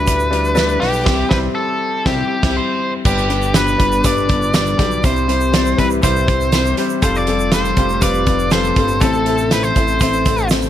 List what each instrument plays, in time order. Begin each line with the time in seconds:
Already playing: analog synth bass D2, grand piano G2 G3 D4 E4 A4 B4, lead electric guitar B4
0.06 grand piano G3 D4 E4 B4, kick, closed hi-hat, shaker
0.20 shaker
0.31 grand piano G3 D4 E4 B4, closed hi-hat
0.45 shaker
0.55 grand piano G3 D4 E4 B4, snare, closed hi-hat, shaker
0.69 shaker
0.79 analog synth bass B1, grand piano G3 D4 E4 B4, lead electric guitar G4, snare, open hi-hat
0.93 shaker
1.04 analog synth bass C2, grand piano C3 G3 C4 E4 C5, kick, snare, crash
1.29 analog synth bass C2, grand piano G3 C4 E4 C5, lead electric guitar B4, kick, snare
1.55 lead electric guitar A4
2.06 analog synth bass C2, grand piano G3 C4 E4 C5, lead electric guitar G4, kick, snare
2.43 analog synth bass C2, grand piano G3 C4 E4, kick, snare, crash
2.57 lead electric guitar C5
3.05 analog synth bass G1, grand piano G2 G3 B3 D4 B4, analog synth pad B2 D3 G3 D4 G4, lead electric guitar G4, kick, crash, shaker
3.18 shaker
3.29 grand piano G3 B3 D4 B4, closed hi-hat
3.42 shaker
3.54 grand piano G3 B3 D4 B4, lead electric guitar B4, snare, closed hi-hat, shaker
3.67 shaker
3.78 analog synth bass G1, grand piano G3 B3 D4 B4, kick, closed hi-hat
3.92 shaker
4.04 analog synth bass G1, grand piano G3 B3 D4 B4, lead electric guitar D5, kick, closed hi-hat, shaker
4.17 shaker
4.28 grand piano G3 B3 D4 B4, kick, closed hi-hat
4.42 shaker
4.53 grand piano G3 B3 D4 D5, lead electric guitar D5, snare, closed hi-hat, shaker
4.66 shaker
4.77 analog synth bass B1, grand piano G3 B3 D4 G4, kick, snare, closed hi-hat
4.92 shaker
5.02 analog synth bass C2, analog synth pad C3 E3 E4, grand piano C3 G3 C4 E4 C5, lead electric guitar C5, kick, closed hi-hat, shaker
5.16 shaker
5.28 grand piano G3 C4 E4 C5, closed hi-hat
5.41 shaker
5.52 grand piano G3 C4 E4 D5, snare, closed hi-hat, shaker
5.66 shaker
5.77 analog synth bass C2, grand piano G3 C4 E4 B4, lead electric guitar B4, kick, closed hi-hat
5.91 shaker
6.01 analog synth bass C2, grand piano G3 C4 E4 C5, lead electric guitar C5, kick, closed hi-hat, shaker
6.16 shaker
6.27 grand piano G3 C4 E4 C5, kick, closed hi-hat
6.41 shaker
6.52 grand piano G3 C4 E4 C5, snare, closed hi-hat, shaker
6.66 shaker
6.77 grand piano G3 C4 E4 C5, closed hi-hat
6.90 shaker
7.02 analog synth bass F1, grand piano G3 C4 F4 A4, analog synth pad G3 A3 F4, lead electric guitar C5, kick, closed hi-hat, shaker
7.15 lead electric guitar D5, shaker
7.27 grand piano G3 C4 F4 A4, closed hi-hat
7.39 shaker
7.52 grand piano G3 C4 F4 A4, lead electric guitar C5, snare, closed hi-hat, shaker
7.65 shaker
7.77 analog synth bass F1, grand piano G3 C4 F4 G4, kick, closed hi-hat
7.89 shaker
8.01 analog synth bass F1, grand piano G3 C4 F4 B4, lead electric guitar D5, kick, closed hi-hat, shaker
8.14 shaker
8.26 grand piano G3 C4 F4 B4, kick, closed hi-hat
8.39 shaker
8.51 grand piano G3 C4 F4 A4, lead electric guitar C5, snare, closed hi-hat, shaker
8.64 shaker
8.76 analog synth bass G1, grand piano G3 C4 F4 A4, kick, closed hi-hat
8.88 shaker
9.01 analog synth bass A1, grand piano A2 A3 C4 E4 C5, analog synth pad E3 E4 A4, lead electric guitar A4, kick, closed hi-hat, shaker
9.13 shaker
9.26 grand piano A3 C4 E4 C5, closed hi-hat
9.38 shaker
9.51 grand piano A3 C4 E4 C5, lead electric guitar B4, snare, closed hi-hat, shaker
9.63 lead electric guitar C5, shaker
9.76 analog synth bass A1, grand piano A3 C4 E4 C5, kick, closed hi-hat, shaker
9.88 shaker
10.00 analog synth bass A1, grand piano A3 C4 E4 C5, lead electric guitar C5, kick, closed hi-hat, shaker
10.13 shaker
10.26 grand piano A3 C4 E4 C5, kick, closed hi-hat, shaker
10.38 shaker
10.49 grand piano A3 C4 E4 C5, snare, closed hi-hat, shaker
10.62 shaker